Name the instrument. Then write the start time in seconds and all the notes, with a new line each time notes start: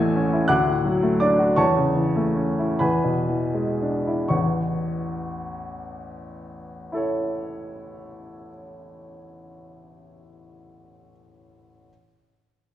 upright piano
Already playing: A1 E2 E3 G#5 E6 G#6
0.00 A3
0.16 C#4
0.33 E4
0.48 D2 F#5 D6 F#6
0.68 A2
0.85 F#3
1.03 A3
1.20 D4 D5 D6
1.39 F#4
1.56 E2 C#5 A5 C#6
1.76 C#3
1.96 E3
2.16 A3
2.37 C#4
2.59 E4
2.79 E2 B4 G#5 B5
3.04 B2
3.28 E3
3.54 G#3
3.82 D4
4.07 E4
4.29 A1 E2 C#6
6.92 E4 A4 C#5